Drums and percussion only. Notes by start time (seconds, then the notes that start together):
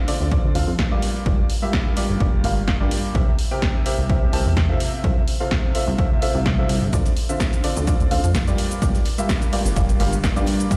0.08 open hi-hat
0.32 kick
0.55 open hi-hat
0.79 kick, snare
1.02 open hi-hat
1.26 kick
1.50 open hi-hat
1.73 kick, snare
1.97 open hi-hat
2.20 kick
2.44 open hi-hat
2.68 kick, snare
2.91 open hi-hat
3.15 kick
3.39 open hi-hat
3.62 kick, snare
3.86 open hi-hat
4.10 kick
4.33 open hi-hat
4.57 kick, snare
4.80 open hi-hat
5.04 kick
5.28 open hi-hat
5.51 kick, snare
5.75 open hi-hat
5.98 kick
6.22 open hi-hat
6.46 kick, snare
6.69 open hi-hat
6.93 kick, closed hi-hat, cabasa
7.05 snare, closed hi-hat, cabasa
7.17 closed hi-hat, open hi-hat
7.29 closed hi-hat, cabasa
7.40 kick, snare, closed hi-hat, cabasa
7.53 closed hi-hat, cabasa
7.64 closed hi-hat, open hi-hat
7.77 closed hi-hat, cabasa
7.87 kick, closed hi-hat, cabasa
8.00 closed hi-hat, cabasa
8.11 closed hi-hat, open hi-hat
8.24 closed hi-hat, cabasa
8.35 kick, snare, closed hi-hat, cabasa
8.47 closed hi-hat, cabasa
8.58 closed hi-hat, open hi-hat
8.71 closed hi-hat, cabasa
8.82 kick, closed hi-hat, cabasa
8.95 snare, closed hi-hat, cabasa
9.05 snare, closed hi-hat, open hi-hat
9.18 closed hi-hat, cabasa
9.29 kick, snare, closed hi-hat, cabasa
9.42 closed hi-hat, cabasa
9.53 closed hi-hat, open hi-hat
9.65 snare, closed hi-hat, cabasa
9.76 kick, closed hi-hat, cabasa
9.89 closed hi-hat, cabasa
10.00 snare, closed hi-hat, open hi-hat
10.13 closed hi-hat, cabasa
10.24 kick, snare, closed hi-hat, cabasa
10.36 closed hi-hat, cabasa
10.46 closed hi-hat, open hi-hat
10.59 closed hi-hat, cabasa
10.71 kick, closed hi-hat, cabasa